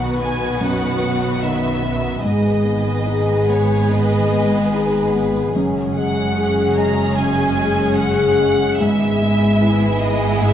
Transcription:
0.00 0.56 B1 soft
0.00 2.20 B1 soft
0.00 0.59 B2 soft
0.00 2.20 B2 soft
0.00 2.20 D#3 soft
0.00 0.87 F#3 soft
0.00 0.20 B3 soft
0.00 0.32 B3 soft
0.00 2.21 B3 soft
0.00 0.44 D#4 soft
0.00 0.29 F#4 soft
0.00 2.20 F#4 soft
0.00 1.41 B4 soft
0.00 2.20 B4 soft
0.00 0.15 F#5 medium
0.20 0.85 B3 soft
0.20 0.60 G#5 medium
0.33 1.96 B3 soft
0.60 1.26 F#2 soft
0.60 2.27 B2 soft
0.60 1.43 F#5 medium
0.88 2.27 F#3 soft
1.02 1.67 B3 soft
1.42 2.08 D#3 soft
1.42 5.32 B4 soft
1.42 2.25 E5 medium
1.82 2.24 B3 soft
1.97 2.78 B3 soft
2.23 5.51 G#1 soft
2.23 3.86 G#2 soft
2.23 5.51 G#2 soft
2.23 3.90 G#2 soft
2.23 5.51 G#3 soft
2.23 5.51 B3 soft
2.23 5.51 G#4 soft
2.23 5.50 B4 soft
2.23 3.46 D#5 medium
2.53 4.17 D#3 soft
2.65 3.32 B3 soft
2.79 3.34 B3 soft
3.07 3.74 D#4 soft
3.07 4.72 G#4 soft
3.35 4.44 B3 soft
3.49 4.15 B3 soft
3.49 3.91 C#5 soft
3.62 5.26 G#3 soft
3.91 5.58 G#2 soft
3.91 4.57 D#3 soft
3.91 5.14 D#5 medium
4.19 5.58 D#3 soft
4.32 4.98 B3 soft
4.45 4.98 B3 soft
4.73 5.39 D#4 soft
4.73 6.34 G#4 soft
4.99 5.58 B3 soft
5.15 5.55 B3 soft
5.27 6.89 G#3 soft
5.54 8.80 F#1 soft
5.54 7.17 F#2 soft
5.54 8.80 F#2 soft
5.54 7.14 F#2 soft
5.54 8.76 G#3 medium
5.54 8.76 C#4 medium
5.54 8.76 G#4 soft
5.82 7.44 C#3 soft
5.96 6.61 G#3 soft
5.96 6.73 F#5 medium
6.08 6.62 C#4 soft
6.36 7.98 G#4 soft
6.36 7.02 G#4 soft
6.63 7.70 C#4 soft
6.77 7.42 G#3 soft
6.77 7.17 A#5 medium
6.90 8.53 G#3 soft
7.16 8.83 F#2 soft
7.16 7.83 C#3 soft
7.16 7.98 G#5 medium
7.45 8.83 C#3 soft
7.58 8.23 G#3 soft
7.71 8.25 C#4 soft
7.96 10.53 G#4 soft
7.96 8.64 G#4 soft
7.96 8.77 F#5 medium
8.26 8.83 C#4 soft
8.40 8.80 G#3 soft
8.54 9.06 G#3 soft
8.78 10.53 G#1 soft
8.78 10.53 G#2 medium
8.78 10.39 G#2 soft
8.78 10.37 G#2 medium
8.78 10.53 G#3 medium
8.78 10.53 B3 medium
8.78 10.53 E4 medium
8.78 10.53 G#4 medium
8.78 10.00 E5 medium
9.07 10.53 G#3 soft
9.21 9.85 G#3 soft
9.33 9.87 E4 soft
9.61 10.25 E4 soft
9.61 10.53 B4 soft
9.88 10.53 E4 soft
10.01 10.53 G#3 soft
10.01 10.41 D#5 medium
10.15 10.53 B3 soft
10.40 10.53 G#2 medium
10.40 10.53 G#2 soft
10.40 10.53 E5 medium

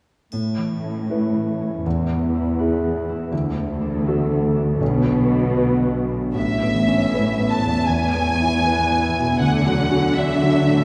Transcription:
0.32 1.88 A2 soft
0.32 1.81 A2 soft
0.32 triangle soft
0.57 1.34 E3 soft
0.84 1.59 C#4 soft
1.10 1.81 E4 soft
1.10 2.58 B4 soft
1.10 1.82 B4 soft
1.35 1.84 E3 soft
1.60 1.88 C#4 soft
1.85 3.32 E2 soft
1.85 3.29 E2 soft
1.85 3.35 E3 soft
2.10 2.83 B3 soft
2.35 3.07 E4 soft
2.59 3.29 E4 soft
2.59 3.28 G#4 soft
2.59 3.35 B4 soft
2.84 3.35 B3 soft
3.09 3.35 E4 soft
3.32 4.77 D2 soft
3.32 4.81 D2 soft
3.32 4.84 D3 soft
3.57 4.30 A3 soft
3.81 4.54 D4 soft
4.07 4.78 F#4 soft
4.07 4.84 A4 soft
4.07 4.78 A4 soft
4.31 4.84 A3 soft
4.56 5.30 D4 soft
4.80 6.32 B1 soft
4.80 6.38 B2 soft
4.80 6.15 B2 soft
5.05 5.81 F#3 soft
5.32 6.08 D4 soft
5.55 6.32 F#4 soft
5.55 7.49 B4 soft
5.55 6.32 B4 soft
5.82 6.38 F#3 soft
6.09 6.38 D4 soft
6.35 7.84 A1 soft
6.35 7.91 A2 soft
6.35 7.85 A2 soft
6.35 7.47 E5 soft
6.62 7.03 B3 soft
6.73 7.87 E3 soft
6.88 7.29 C#4 soft
7.11 7.91 C#4 soft
7.11 7.54 B4 soft
7.39 7.79 B3 soft
7.50 8.63 B4 soft
7.50 7.88 A5 soft
7.65 7.88 E2 soft
7.88 9.40 E2 soft
7.88 9.37 E2 soft
7.88 9.43 E3 soft
7.88 9.40 G#5 soft
8.15 8.55 B3 soft
8.26 9.44 B3 soft
8.40 8.80 E4 soft
8.64 9.43 B4 soft
8.64 9.06 B4 soft
8.92 9.32 B3 soft
9.01 9.43 E5 soft
9.18 9.42 B2 soft
9.39 10.84 D2 soft
9.39 10.84 D3 soft
9.39 10.14 F#5 soft
9.67 10.07 F#3 soft
9.78 10.84 D4 soft
9.91 10.31 F#4 soft
10.16 10.84 F#4 soft
10.16 10.57 D5 soft
10.16 10.84 E5 soft
10.42 10.82 F#3 soft
10.53 10.84 D5 soft
10.68 10.84 A2 soft

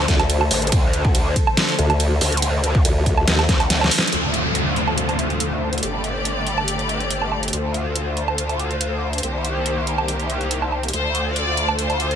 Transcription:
0.00 4.09 D3 medium
0.00 4.09 A3 medium
0.00 4.09 A4 medium
0.00 4.11 C5 medium
0.08 0.49 D2 loud
0.08 kick medium
0.08 snare medium
0.08 closed hi-hat medium
0.19 closed hi-hat soft
0.19 low woodblock medium
0.30 closed hi-hat medium
0.30 ride soft
0.41 low woodblock medium
0.51 0.71 A1 medium
0.51 open hi-hat loud
0.62 closed hi-hat soft
0.67 closed hi-hat medium
0.72 1.34 D2 loud
0.72 kick loud
0.72 closed hi-hat medium
0.72 ride medium
0.93 closed hi-hat medium
1.05 kick loud
1.15 closed hi-hat medium
1.15 ride soft
1.36 kick medium
1.36 closed hi-hat medium
1.47 low woodblock medium
1.57 snare loud
1.57 closed hi-hat medium
1.57 ride medium
1.69 closed hi-hat soft
1.78 2.19 D2 loud
1.78 closed hi-hat medium
1.90 closed hi-hat soft
1.90 low woodblock medium
2.00 closed hi-hat medium
2.00 ride medium
2.21 2.83 D2 loud
2.21 open hi-hat loud
2.32 closed hi-hat soft
2.37 closed hi-hat medium
2.42 closed hi-hat medium
2.42 ride medium
2.64 closed hi-hat medium
2.75 kick loud
2.85 3.26 D2 loud
2.85 closed hi-hat medium
2.85 ride soft
3.06 kick medium
3.06 closed hi-hat medium
3.17 low woodblock medium
3.27 3.47 D#2 loud
3.27 snare loud
3.27 closed hi-hat medium
3.27 ride medium
3.39 closed hi-hat soft
3.39 low woodblock medium
3.49 3.90 D2 loud
3.49 kick medium
3.49 snare medium
3.49 closed hi-hat medium
3.60 closed hi-hat soft
3.60 low woodblock medium
3.70 snare medium
3.70 closed hi-hat medium
3.70 ride medium
3.81 snare medium
3.81 low woodblock medium
3.91 open hi-hat loud
3.98 snare loud
4.02 closed hi-hat medium
4.08 closed hi-hat medium
4.13 5.81 D2 medium
4.13 9.19 D3 medium
4.13 9.19 A3 medium
4.13 5.81 F4 medium
4.13 5.81 C5 medium
4.13 closed hi-hat medium
4.13 downlifter medium
4.34 closed hi-hat medium
4.55 closed hi-hat medium
4.76 closed hi-hat medium
4.88 low woodblock medium
4.98 closed hi-hat medium
5.09 closed hi-hat soft
5.09 low woodblock soft
5.19 closed hi-hat soft
5.30 closed hi-hat soft
5.40 closed hi-hat medium
5.73 closed hi-hat soft
5.78 closed hi-hat medium
5.83 7.51 G1 medium
5.83 7.51 G4 medium
5.83 7.51 D5 medium
5.83 closed hi-hat medium
6.04 closed hi-hat medium
6.25 closed hi-hat medium
6.47 closed hi-hat medium
6.58 low woodblock medium
6.68 closed hi-hat medium
6.79 closed hi-hat soft
6.89 closed hi-hat medium
7.00 closed hi-hat soft
7.11 closed hi-hat medium
7.22 low woodblock medium
7.32 low woodblock soft
7.43 closed hi-hat soft
7.48 closed hi-hat medium
7.53 9.21 D2 medium
7.53 9.22 F4 medium
7.53 10.90 C5 medium
7.53 closed hi-hat medium
7.74 closed hi-hat medium
7.96 closed hi-hat medium
8.17 closed hi-hat soft
8.28 low woodblock medium
8.38 closed hi-hat medium
8.49 closed hi-hat soft
8.49 low woodblock soft
8.59 closed hi-hat soft
8.71 closed hi-hat soft
8.81 closed hi-hat medium
9.13 closed hi-hat soft
9.18 closed hi-hat medium
9.23 10.91 C2 medium
9.23 10.92 D#3 medium
9.23 10.92 A#3 medium
9.23 10.92 G4 medium
9.23 closed hi-hat medium
9.45 closed hi-hat medium
9.66 closed hi-hat medium
9.87 closed hi-hat soft
9.98 low woodblock medium
10.08 closed hi-hat medium
10.20 closed hi-hat soft
10.30 closed hi-hat soft
10.41 closed hi-hat soft
10.51 closed hi-hat medium
10.62 low woodblock medium
10.72 low woodblock soft
10.83 closed hi-hat soft
10.88 closed hi-hat medium
10.93 12.15 D2 medium
10.93 12.15 D3 medium
10.93 12.15 A3 medium
10.93 12.15 F4 medium
10.93 12.15 C5 medium
10.93 11.30 C5 medium
10.93 closed hi-hat medium
11.15 closed hi-hat soft
11.36 11.73 D5 medium
11.36 closed hi-hat medium
11.57 closed hi-hat soft
11.69 low woodblock medium
11.79 12.15 C5 medium
11.79 closed hi-hat medium
11.90 closed hi-hat soft
11.90 low woodblock medium
12.00 closed hi-hat soft
12.11 closed hi-hat soft

